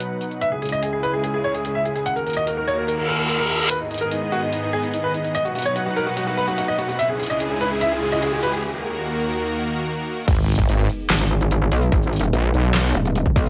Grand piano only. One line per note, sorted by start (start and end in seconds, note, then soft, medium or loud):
0.41 0.48 E5 medium
0.52 0.58 G#4 medium
0.62 0.68 G#4 medium
0.72 0.79 D#5 medium
0.83 0.89 G#4 medium
0.93 0.99 G#4 medium
1.03 1.09 B4 medium
1.14 1.20 G#4 medium
1.24 1.30 G#4 medium
1.34 1.40 G#4 medium
1.44 1.51 C#5 medium
1.55 1.61 G#4 medium
1.65 1.71 G#4 medium
1.75 1.81 E5 medium
1.85 1.92 G#4 medium
1.96 2.02 G#4 medium
2.06 2.12 F#5 medium
2.16 2.22 A#4 medium
2.26 2.33 A#4 medium
2.37 2.43 D#5 medium
2.47 2.53 A#4 medium
2.57 2.64 A#4 medium
2.68 2.74 C#5 medium
2.78 2.84 A#4 medium
2.88 2.94 A#4 medium
2.98 3.05 A#4 medium
3.09 3.15 A#4 medium
3.19 3.25 A#4 medium
3.29 3.36 A#4 medium
3.39 3.46 A#4 medium
3.50 3.56 A#4 medium
3.60 3.66 A#4 medium
3.70 3.77 B4 medium
3.81 3.87 D#4 medium
3.91 3.97 D#4 medium
4.01 4.07 A#4 medium
4.11 4.18 D#4 medium
4.22 4.28 D#4 medium
4.32 4.38 F#4 medium
4.42 4.49 D#4 medium
4.53 4.59 D#4 medium
4.63 4.69 D#4 medium
4.73 4.79 G#4 medium
4.83 4.90 D#4 medium
4.94 5.00 D#4 medium
5.04 5.10 B4 medium
5.14 5.21 D#4 medium
5.24 5.31 D#4 medium
5.35 5.41 D#5 medium
5.45 5.51 F#4 medium
5.55 5.62 F#4 medium
5.65 5.72 C#5 medium
5.76 5.82 F#4 medium
5.86 5.92 F#4 medium
5.96 6.03 A#4 medium
6.07 6.13 F#4 medium
6.17 6.23 F#4 medium
6.27 6.33 F#4 medium
6.37 6.44 B4 medium
6.48 6.54 F#4 medium
6.58 6.64 F#4 medium
6.68 6.75 D#5 medium
6.78 6.85 F#4 medium
6.89 6.95 F#4 medium
6.99 7.05 E5 medium
7.09 7.16 G#4 medium
7.20 7.26 G#4 medium
7.30 7.36 D#5 medium
7.40 7.46 G#4 medium
7.50 7.57 G#4 medium
7.61 7.67 B4 medium
7.71 7.77 G#4 medium
7.81 7.88 E5 medium
7.92 7.98 G#4 medium
8.02 8.08 G#4 medium
8.12 8.19 D#5 medium
8.23 8.29 G#4 medium
8.33 8.39 G#4 medium
8.43 8.49 B4 medium
8.53 8.60 G#4 medium